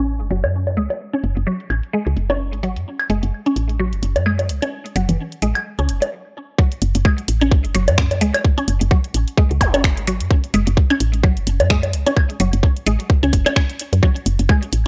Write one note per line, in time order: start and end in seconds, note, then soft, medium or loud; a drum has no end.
0.00 0.22 A1 medium
0.21 0.29 F#1 loud
0.21 closed hi-hat soft
0.31 0.45 F#1 medium
0.31 0.35 F#3 medium
0.31 open hi-hat medium
0.44 0.79 F#2 medium
0.44 closed hi-hat soft
0.44 claves medium
0.44 low woodblock medium
0.67 closed hi-hat soft
0.67 low woodblock medium
0.77 0.88 C#2 medium
0.77 0.82 G#3 medium
0.77 open hi-hat medium
0.90 closed hi-hat soft
0.90 low woodblock soft
1.13 1.16 C#4 medium
1.13 open hi-hat soft
1.24 1.34 F#1 medium
1.24 open hi-hat medium
1.37 1.45 F#1 loud
1.37 closed hi-hat soft
1.47 1.51 F#3 medium
1.60 closed hi-hat soft
1.70 1.81 A1 medium
1.70 open hi-hat medium
1.70 claves medium
1.83 open hi-hat soft
1.93 1.98 G#3 medium
2.06 2.15 C#2 medium
2.06 closed hi-hat soft
2.16 2.54 F#1 medium
2.16 open hi-hat medium
2.30 2.32 C#4 medium
2.30 closed hi-hat soft
2.30 low woodblock medium
2.53 2.78 G#1 medium
2.53 closed hi-hat soft
2.63 2.68 F#3 medium
2.63 open hi-hat medium
2.76 2.85 F#2 loud
2.76 closed hi-hat medium
2.99 open hi-hat soft
2.99 claves medium
3.10 3.20 F#1 medium
3.10 3.14 G#3 medium
3.10 open hi-hat medium
3.23 3.31 F#1 loud
3.23 closed hi-hat medium
3.46 3.48 C#4 medium
3.46 closed hi-hat soft
3.56 3.94 A1 medium
3.56 open hi-hat medium
3.69 open hi-hat soft
3.80 3.84 F#3 medium
3.93 4.01 F#1 loud
3.93 closed hi-hat soft
4.03 4.17 F#1 medium
4.03 open hi-hat medium
4.16 4.51 F#2 medium
4.16 closed hi-hat medium
4.16 low woodblock medium
4.26 4.31 G#3 medium
4.26 claves medium
4.39 closed hi-hat soft
4.39 low woodblock medium
4.49 4.60 C#2 medium
4.49 open hi-hat medium
4.62 4.64 C#4 medium
4.62 closed hi-hat medium
4.62 low woodblock soft
4.86 open hi-hat soft
4.96 5.06 F#1 medium
4.96 5.00 F#3 medium
4.96 open hi-hat medium
5.09 5.17 F#1 loud
5.09 closed hi-hat medium
5.09 low conga medium
5.32 closed hi-hat soft
5.42 5.53 A1 medium
5.42 5.47 G#3 medium
5.42 open hi-hat medium
5.55 open hi-hat soft
5.55 claves medium
5.79 5.90 C#2 medium
5.79 5.81 C#4 medium
5.79 closed hi-hat soft
5.89 6.00 F#1 medium
5.89 open hi-hat medium
6.02 closed hi-hat soft
6.02 low woodblock medium
6.58 6.63 F#3 medium
6.58 kick loud
6.72 open hi-hat soft
6.82 6.93 F#1 loud
6.82 open hi-hat medium
6.95 7.03 F#1 loud
6.95 closed hi-hat medium
7.05 7.10 G#3 medium
7.05 kick loud
7.05 claves medium
7.18 closed hi-hat soft
7.28 7.66 A1 medium
7.28 open hi-hat loud
7.41 7.44 C#4 medium
7.41 open hi-hat soft
7.51 kick loud
7.65 7.73 F#1 loud
7.65 closed hi-hat soft
7.75 7.90 F#1 medium
7.75 7.79 F#3 medium
7.75 open hi-hat medium
7.88 8.23 F#2 medium
7.88 closed hi-hat medium
7.88 low woodblock medium
7.98 finger snap loud
7.98 kick loud
8.11 closed hi-hat soft
8.11 low woodblock medium
8.21 8.32 C#2 medium
8.21 8.26 G#3 medium
8.21 open hi-hat medium
8.34 closed hi-hat medium
8.34 claves medium
8.34 low woodblock soft
8.45 kick loud
8.58 8.60 C#4 medium
8.58 open hi-hat soft
8.68 8.79 F#1 loud
8.68 open hi-hat medium
8.81 8.89 F#1 loud
8.81 closed hi-hat medium
8.91 8.96 F#3 medium
8.91 kick loud
9.04 closed hi-hat soft
9.14 9.25 A1 medium
9.14 open hi-hat loud
9.28 open hi-hat soft
9.37 9.42 G#3 medium
9.37 kick loud
9.51 9.59 C#2 medium
9.51 closed hi-hat soft
9.61 9.99 F#1 medium
9.61 kick medium
9.61 open hi-hat medium
9.61 zap medium
9.61 claves medium
9.74 9.76 C#4 medium
9.74 closed hi-hat medium
9.74 low woodblock medium
9.84 finger snap loud
9.84 kick loud
9.97 10.22 G#1 medium
9.97 closed hi-hat soft
10.07 10.12 F#3 medium
10.07 open hi-hat loud
10.20 10.29 F#2 loud
10.20 closed hi-hat medium
10.31 kick loud
10.44 open hi-hat soft
10.54 10.65 F#1 loud
10.54 10.58 G#3 medium
10.54 open hi-hat loud
10.67 10.75 F#1 loud
10.67 closed hi-hat medium
10.77 kick loud
10.90 10.92 C#4 medium
10.90 closed hi-hat soft
10.90 claves medium
11.00 11.38 A1 medium
11.00 open hi-hat loud
11.14 open hi-hat soft
11.23 11.28 F#3 medium
11.23 kick loud
11.37 11.45 F#1 loud
11.37 closed hi-hat soft
11.47 11.62 F#1 medium
11.47 open hi-hat medium
11.60 11.95 F#2 medium
11.60 closed hi-hat medium
11.60 low woodblock medium
11.70 11.75 G#3 medium
11.70 finger snap loud
11.70 kick loud
11.83 closed hi-hat soft
11.83 low woodblock medium
11.93 12.04 C#2 medium
11.93 open hi-hat loud
12.06 12.09 C#4 medium
12.06 closed hi-hat medium
12.06 low woodblock medium
12.17 kick loud
12.17 claves medium
12.30 open hi-hat soft
12.40 12.51 F#1 loud
12.40 12.45 F#3 medium
12.40 open hi-hat loud
12.53 12.61 F#1 loud
12.53 closed hi-hat soft
12.63 kick loud
12.76 closed hi-hat soft
12.86 12.97 A1 medium
12.86 12.91 G#3 medium
12.86 open hi-hat loud
13.00 open hi-hat soft
13.10 kick loud
13.23 13.31 C#2 medium
13.23 13.25 C#4 medium
13.23 closed hi-hat soft
13.33 13.44 F#1 medium
13.33 kick medium
13.33 open hi-hat loud
13.46 13.51 C#4 loud
13.46 closed hi-hat medium
13.46 claves medium
13.46 low woodblock medium
13.56 13.61 C#4 medium
13.56 finger snap loud
13.56 kick loud
13.69 closed hi-hat soft
13.79 open hi-hat loud
13.93 14.01 F#2 medium
13.93 closed hi-hat medium
14.03 14.07 F#3 medium
14.03 kick loud
14.16 open hi-hat soft
14.26 14.37 F#1 loud
14.26 open hi-hat loud
14.39 14.47 F#1 loud
14.39 closed hi-hat medium
14.49 14.54 G#3 medium
14.49 kick loud
14.49 claves medium
14.63 closed hi-hat soft
14.73 14.87 A1 medium
14.73 open hi-hat loud